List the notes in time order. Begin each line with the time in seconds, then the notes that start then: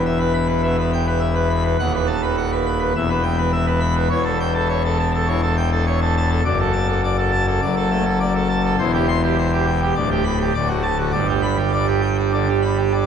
Already playing: E1 E2
0.06 E5
0.20 B4
0.34 B5
0.48 B4
0.63 B2 E5
0.78 B4
0.93 G5
1.07 B4
1.20 E5
1.35 B4
1.50 B5
1.65 B4
1.79 D#1 D#2 F#5
1.95 B4
2.07 A5
2.22 B4
2.37 F#5
2.52 B4
2.66 B5
2.81 B4
2.95 E1 E2 E5
3.10 B4
3.23 G5
3.38 B4
3.52 E5
3.67 B4
3.80 B5
3.95 B4
4.10 E1 E2 C#5
4.24 A4
4.40 G5
4.54 A4
4.69 C#5
4.85 A4
4.99 A5
5.14 A4
5.27 E3 C#5
5.42 A4
5.57 G5
5.72 A4
5.87 C#5
6.02 A4
6.17 A5
6.30 A4
6.45 F#1 F#2 D5
6.59 A4
6.73 A5
6.88 A4
7.04 D5
7.18 A4
7.32 A5
7.47 A4
7.62 F#1 F#2 D5
7.76 A4
7.91 A3 A5
8.05 A4
8.20 D5
8.35 A4
8.49 A5
8.64 A4
8.78 E1 E2 C5
8.94 G4
9.08 C6
9.23 G4
9.38 C5
9.53 G4
9.67 G5
9.82 G4
9.95 D1 D2 D5
10.11 G4
10.24 B5
10.40 G4
10.54 D1 D2 D5
10.68 F#4
10.83 A5
10.98 F#4
11.12 G1 G2 D5
11.28 G4
11.42 B5
11.57 G4
11.73 D5
11.87 G4
12.02 G5
12.18 G4
12.33 D3 D5
12.49 G4
12.62 B5
12.78 G4
12.93 D5